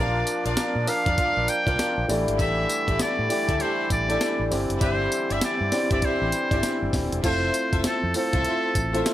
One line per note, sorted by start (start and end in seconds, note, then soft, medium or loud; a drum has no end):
0.00 0.22 A#1 loud
0.00 2.06 F3 medium
0.00 2.06 A#3 medium
0.00 0.81 D4 medium
0.00 2.06 D4 medium
0.00 0.19 F4 medium
0.00 0.81 F4 medium
0.00 0.19 A#4 medium
0.00 0.82 A#4 medium
0.00 0.19 D5 medium
0.00 0.43 D5 medium
0.00 0.19 F5 loud
0.27 closed hi-hat medium
0.27 tambourine medium
0.45 0.55 A#1 medium
0.45 0.62 F4 medium
0.45 0.63 A#4 medium
0.45 0.63 D5 medium
0.45 0.90 D5 medium
0.45 0.63 F5 medium
0.45 closed hi-hat medium
0.57 muted fingered electric bass stroke medium
0.57 snare loud
0.57 closed hi-hat medium
0.57 tambourine loud
0.75 0.85 A#2 loud
0.87 1.58 D4 medium
0.87 1.59 F4 medium
0.87 1.59 A#4 medium
0.87 1.51 F5 loud
0.87 open hi-hat medium
0.87 tambourine medium
1.06 1.16 F2 medium
1.06 1.17 F4 medium
1.06 1.17 A#4 medium
1.06 1.17 D5 medium
1.06 1.17 F5 medium
1.06 kick loud
1.06 closed hi-hat medium
1.18 1.40 F4 medium
1.18 1.40 A#4 medium
1.18 1.40 D5 medium
1.18 1.40 F5 medium
1.18 kick loud
1.18 closed hi-hat medium
1.37 1.46 A#1 medium
1.48 2.09 G5 loud
1.48 closed hi-hat medium
1.48 tambourine medium
1.66 1.76 C2 medium
1.66 2.07 D4 medium
1.66 1.84 F4 medium
1.66 2.09 F4 medium
1.66 1.84 A#4 medium
1.66 2.09 A#4 medium
1.66 1.84 D5 medium
1.66 1.84 F5 medium
1.66 kick loud
1.66 closed hi-hat medium
1.79 snare loud
1.79 closed hi-hat medium
1.79 tambourine medium
1.98 2.07 A#1 loud
2.08 2.24 A1 loud
2.08 7.20 D3 medium
2.08 7.20 E3 medium
2.08 4.48 G3 medium
2.08 3.21 A3 medium
2.08 4.48 A3 medium
2.08 3.22 D4 medium
2.08 3.22 E4 medium
2.08 7.20 E4 medium
2.08 3.22 G4 medium
2.08 3.22 D5 medium
2.08 open hi-hat medium
2.08 tambourine medium
2.28 2.37 G#1 medium
2.28 closed hi-hat medium
2.39 2.64 A1 loud
2.39 2.61 G4 medium
2.39 2.61 A4 medium
2.39 2.61 D5 medium
2.39 2.61 E5 loud
2.39 3.03 E5 loud
2.39 kick loud
2.39 closed hi-hat medium
2.39 tambourine medium
2.70 closed hi-hat medium
2.70 tambourine medium
2.88 2.98 A1 medium
2.88 3.05 G4 medium
2.88 3.05 A4 medium
2.88 3.05 D5 medium
2.88 3.05 E5 medium
2.88 kick loud
2.88 closed hi-hat medium
2.99 3.63 D5 loud
2.99 muted fingered electric bass stroke medium
2.99 snare loud
2.99 closed hi-hat medium
2.99 tambourine loud
3.19 3.28 A2 loud
3.29 4.01 A3 medium
3.29 4.01 D4 medium
3.29 4.01 E4 medium
3.29 4.01 G4 medium
3.29 4.01 D5 medium
3.29 open hi-hat medium
3.29 tambourine medium
3.48 3.58 D2 medium
3.48 3.59 G4 medium
3.48 3.59 A4 medium
3.48 3.59 D5 medium
3.48 3.59 E5 medium
3.48 kick loud
3.48 closed hi-hat medium
3.60 3.82 G4 medium
3.60 3.82 A4 medium
3.60 3.91 C5 loud
3.60 3.82 D5 medium
3.60 3.82 E5 loud
3.60 closed hi-hat medium
3.90 4.16 A1 loud
3.90 4.48 D5 loud
3.90 kick medium
3.90 closed hi-hat medium
3.90 tambourine medium
4.08 4.51 A3 medium
4.08 4.49 D4 medium
4.08 4.50 E4 medium
4.08 4.26 G4 medium
4.08 4.50 G4 medium
4.08 4.26 A4 medium
4.08 4.50 D5 medium
4.08 4.26 D5 medium
4.08 4.26 E5 medium
4.08 closed hi-hat medium
4.21 snare loud
4.21 closed hi-hat medium
4.21 tambourine medium
4.39 4.49 A1 medium
4.51 4.67 G1 loud
4.51 7.21 G3 medium
4.51 7.21 C4 medium
4.51 5.64 C4 medium
4.51 5.64 D4 medium
4.51 5.64 E4 medium
4.51 5.64 G4 medium
4.51 5.65 D5 loud
4.51 open hi-hat medium
4.51 tambourine medium
4.70 4.79 F#1 medium
4.70 closed hi-hat medium
4.81 5.07 G1 loud
4.81 5.03 G4 loud
4.81 5.03 C5 medium
4.81 5.34 C5 loud
4.81 5.03 D5 medium
4.81 5.04 E5 loud
4.81 kick loud
4.81 closed hi-hat medium
4.81 tambourine medium
5.12 closed hi-hat medium
5.12 tambourine medium
5.30 5.40 G1 medium
5.30 5.47 G4 medium
5.30 5.47 C5 medium
5.30 5.47 D5 medium
5.30 5.48 E5 medium
5.30 5.43 E5 medium
5.30 closed hi-hat medium
5.41 5.89 D5 loud
5.41 muted fingered electric bass stroke soft
5.41 snare loud
5.41 closed hi-hat medium
5.41 tambourine loud
5.61 5.70 G2 medium
5.72 6.43 C4 medium
5.72 6.43 D4 medium
5.72 6.43 E4 medium
5.72 6.43 G4 medium
5.72 6.44 D5 medium
5.72 snare medium
5.72 open hi-hat medium
5.72 tambourine medium
5.91 6.01 G1 medium
5.91 6.01 G4 medium
5.91 6.02 C5 medium
5.91 6.02 D5 medium
5.91 6.07 D5 medium
5.91 6.02 E5 medium
5.91 kick loud
5.91 closed hi-hat medium
6.02 6.25 G4 medium
6.02 6.25 C5 medium
6.02 6.95 C5 loud
6.02 6.25 D5 medium
6.02 6.25 E5 medium
6.02 kick medium
6.02 closed hi-hat medium
6.22 6.31 A1 medium
6.32 closed hi-hat medium
6.32 tambourine medium
6.51 6.61 G1 loud
6.51 7.18 C4 medium
6.51 7.18 D4 medium
6.51 7.19 E4 medium
6.51 7.19 G4 medium
6.51 6.68 G4 medium
6.51 6.69 C5 medium
6.51 7.19 D5 medium
6.51 6.69 D5 medium
6.51 6.69 E5 medium
6.51 kick medium
6.51 closed hi-hat medium
6.63 snare medium
6.63 closed hi-hat medium
6.63 tambourine medium
6.82 6.92 G1 medium
6.93 7.09 D#1 loud
6.93 kick loud
6.93 snare medium
6.93 open hi-hat medium
6.93 tambourine medium
7.12 7.22 E1 medium
7.12 closed hi-hat medium
7.23 7.49 F1 loud
7.23 8.08 A3 medium
7.23 8.09 C4 medium
7.23 8.09 E4 medium
7.23 7.46 F4 loud
7.23 8.09 F4 medium
7.23 7.46 A4 medium
7.23 7.46 C5 medium
7.23 8.09 C5 medium
7.23 7.81 C5 loud
7.23 7.46 E5 loud
7.23 kick loud
7.23 closed hi-hat medium
7.23 crash loud
7.23 tambourine medium
7.54 closed hi-hat medium
7.54 tambourine medium
7.73 7.82 F1 medium
7.73 7.90 F4 medium
7.73 7.90 A4 medium
7.73 7.90 C5 medium
7.73 7.90 E5 medium
7.73 kick medium
7.73 closed hi-hat medium
7.84 8.14 A4 medium
7.84 muted fingered electric bass stroke medium
7.84 snare loud
7.84 closed hi-hat medium
7.84 tambourine loud
8.03 8.13 F2 loud
8.14 8.86 A3 medium
8.14 8.86 C4 medium
8.14 8.86 E4 medium
8.14 8.86 F4 medium
8.14 9.14 A4 loud
8.14 8.86 C5 loud
8.14 open hi-hat medium
8.14 tambourine medium
8.33 8.43 C2 loud
8.33 8.44 F4 medium
8.33 8.44 A4 medium
8.33 8.44 C5 medium
8.33 8.44 E5 medium
8.33 kick loud
8.33 closed hi-hat medium
8.45 8.67 F4 medium
8.45 8.67 A4 medium
8.45 8.67 C5 medium
8.45 8.67 E5 medium
8.45 closed hi-hat medium
8.75 9.01 A1 loud
8.75 kick loud
8.75 closed hi-hat medium
8.75 tambourine medium
8.93 9.14 A3 medium
8.93 9.14 C4 medium
8.93 9.14 E4 medium
8.93 9.11 F4 medium
8.93 9.14 F4 medium
8.93 9.11 A4 medium
8.93 9.11 C5 medium
8.93 9.14 C5 loud
8.93 9.11 E5 medium
8.93 closed hi-hat medium
9.06 snare loud
9.06 closed hi-hat medium
9.06 tambourine medium